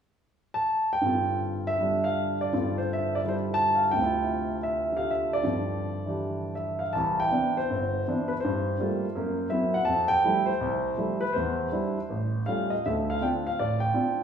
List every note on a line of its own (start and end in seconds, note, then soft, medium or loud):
0.54 0.88 A5 medium
0.93 1.39 G5 medium
1.01 2.52 G2 soft
1.01 1.77 D3 soft
1.01 2.52 C4 soft
1.07 2.53 F4 soft
1.67 2.05 E5 medium
1.78 2.52 D3 soft
1.78 2.54 G3 soft
1.78 2.54 D4 soft
2.04 2.38 F5 medium
2.41 2.78 D5 medium
2.53 3.99 G2 soft
2.53 3.23 D3 soft
2.53 3.99 C4 soft
2.53 4.00 F4 medium
2.78 2.89 C5 medium
2.93 3.16 E5 medium
3.15 3.20 D5 medium
3.24 3.98 D3 soft
3.24 3.99 G3 soft
3.24 3.99 E4 soft
3.29 3.34 C5 medium
3.54 3.80 A5 medium
3.75 3.85 F5 medium
3.91 5.42 D2 soft
3.91 4.57 G5 medium
3.97 5.43 C3 soft
3.97 5.45 E4 soft
4.04 4.92 F4 medium
4.63 4.98 E5 medium
4.92 5.43 D3 soft
4.92 5.44 F4 soft
4.92 5.45 G4 soft
4.97 5.09 F5 medium
5.11 5.31 E5 medium
5.33 6.54 D5 medium
5.43 6.94 G2 soft
5.43 6.94 D3 soft
5.43 6.94 F3 soft
5.43 6.94 C4 soft
6.05 6.94 E3 soft
6.05 6.95 D4 soft
6.05 6.95 G4 soft
6.55 6.81 E5 medium
6.79 6.94 F5 medium
6.93 7.27 C2 medium
6.93 7.27 E3 medium
6.93 7.18 A5 medium
7.20 7.54 G5 medium
7.31 7.57 E3 soft
7.31 7.57 B3 soft
7.31 7.57 C4 soft
7.31 7.57 D4 soft
7.57 8.32 C5 medium
7.70 8.01 G1 medium
8.07 8.32 E3 soft
8.07 8.32 B3 soft
8.07 8.32 C4 soft
8.07 8.32 D4 soft
8.28 8.33 B4 medium
8.40 9.54 C5 medium
8.45 8.75 G2 medium
8.80 9.04 G3 soft
8.80 9.05 A3 soft
8.80 9.05 A#3 soft
8.80 9.05 F4 soft
9.15 9.47 F#2 medium
9.15 9.47 A#3 medium
9.50 9.76 F#3 soft
9.50 9.76 A#3 soft
9.50 9.76 C4 soft
9.50 9.77 E4 medium
9.50 9.73 E5 medium
9.74 9.87 F#5 medium
9.85 10.19 F2 medium
9.85 10.11 A5 medium
10.08 10.44 G5 loud
10.24 10.49 F3 soft
10.24 10.49 G3 soft
10.24 10.49 A3 soft
10.24 10.50 E4 medium
10.46 11.16 C5 medium
10.61 10.92 C2 medium
10.97 11.22 F3 soft
10.97 11.23 G3 soft
10.97 11.22 A3 soft
10.97 11.23 E4 soft
11.21 11.33 B4 medium
11.33 11.67 E2 medium
11.33 12.41 C5 medium
11.72 11.97 G3 soft
11.72 11.97 D4 soft
11.72 11.97 E4 medium
12.10 12.42 A1 medium
12.46 12.73 G3 soft
12.46 12.72 A3 soft
12.46 12.73 C#4 soft
12.46 12.73 F4 soft
12.46 12.71 F5 medium
12.70 12.84 D#5 medium
12.86 13.17 D2 medium
12.86 13.17 D3 medium
12.86 12.91 E5 medium
13.10 13.23 F5 medium
13.21 13.46 C4 soft
13.21 13.47 D4 soft
13.21 13.47 F4 medium
13.21 13.28 G5 medium
13.47 13.60 F5 medium
13.59 13.91 A1 medium
13.59 13.81 D5 medium
13.80 14.23 G5 medium
13.94 14.20 C4 soft
13.94 14.20 D4 soft
13.94 14.20 F4 medium